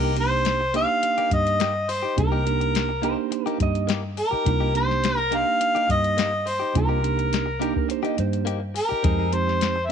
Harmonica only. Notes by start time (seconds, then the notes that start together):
Already playing: A#4
0.20 C5
0.76 F5
1.34 D#5
1.90 C5
2.19 A#4
4.19 A#4
4.77 C5
5.18 A#4
5.34 F5
5.91 D#5
6.48 C5
6.77 A#4
8.77 A#4
9.35 C5
9.86 E5